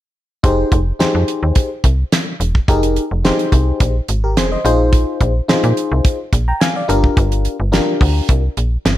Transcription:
0.43 fm bass F1, fm electric piano D#4 G4 G#4 C5, kick, closed hi-hat
0.72 fm bass F1, kick, closed hi-hat
0.99 fm bass F2, fm electric piano D#4 G4 G#4 C5, snare, closed hi-hat
1.15 fm bass F2
1.28 closed hi-hat
1.43 fm bass D#2
1.55 kick, closed hi-hat
1.84 fm bass C2, kick, closed hi-hat
2.12 snare, closed hi-hat
2.40 fm bass E1, closed hi-hat
2.55 kick
2.68 fm bass F1, fm electric piano D#4 G4 G#4 A#4, kick, closed hi-hat
2.83 closed hi-hat
2.96 closed hi-hat
3.11 fm bass F1
3.24 fm electric piano D#4 G4 G#4 C5, snare, closed hi-hat
3.39 closed hi-hat
3.52 fm bass C2, kick, closed hi-hat
3.80 fm bass A#1, kick, closed hi-hat
4.08 fm bass G#1, closed hi-hat
4.24 fm electric piano G4 A#4
4.37 fm bass F1, fm electric piano G#4 C5, snare, closed hi-hat
4.52 fm electric piano C5 D#5
4.65 fm bass A#1, fm electric piano D#4 F4 G#4 C5, closed hi-hat
4.93 kick, closed hi-hat
5.21 fm bass A#1, kick, closed hi-hat
5.48 fm bass A#2, fm electric piano D#4 F4 G#4 C5, snare, closed hi-hat
5.64 fm bass A#2, closed hi-hat
5.77 closed hi-hat
5.92 fm bass C2
6.05 kick, closed hi-hat
6.33 fm bass A#1, kick, closed hi-hat
6.48 fm electric piano G5 A#5
6.60 fm electric piano F5 G#5, snare, closed hi-hat
6.76 fm electric piano D5 F5
6.88 fm bass G1, fm electric piano D4 F4 G4 A#4, closed hi-hat
7.04 kick
7.17 fm bass G1, kick, closed hi-hat
7.32 closed hi-hat
7.45 closed hi-hat
7.60 fm bass G1
7.72 fm electric piano D4 F4 G4 A#4, snare, closed hi-hat
8.01 fm bass D2, kick, open hi-hat
8.29 fm bass C2, kick, closed hi-hat
8.57 fm bass A#1, closed hi-hat
8.85 fm bass G1, snare, closed hi-hat

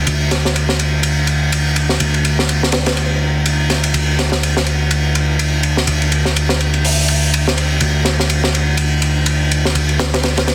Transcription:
0.07 picked electric bass D2, ride
0.31 snare, ride
0.45 snare
0.56 ride
0.69 snare
0.79 ride
1.03 ride
1.27 ride
1.52 ride
1.76 ride
1.89 snare
2.00 picked electric bass D2, ride
2.14 ride
2.25 ride
2.39 snare
2.49 ride
2.63 snare
2.72 snare, ride
2.86 snare, ride
2.97 ride
3.46 ride
3.70 snare, ride
3.83 ride
3.94 picked electric bass D2, ride
4.19 snare, ride
4.32 snare
4.43 ride
4.57 snare
4.66 ride
4.91 ride
5.15 ride
5.39 ride
5.63 ride
5.77 snare
5.87 picked electric bass D2, ride
6.02 ride
6.12 ride
6.25 snare
6.36 ride
6.49 snare
6.60 ride
6.74 ride
6.85 open hi-hat
7.08 ride
7.34 ride
7.48 snare
7.58 ride
7.80 picked electric bass D2, ride
8.05 snare, ride
8.20 snare
8.30 ride
8.44 snare
8.55 ride
8.77 ride
9.02 ride
9.26 ride
9.51 ride
9.65 snare
9.75 picked electric bass D2, ride
9.89 ride
9.99 snare, ride
10.14 snare, ride
10.23 snare, ride
10.37 snare, ride
10.48 snare, ride

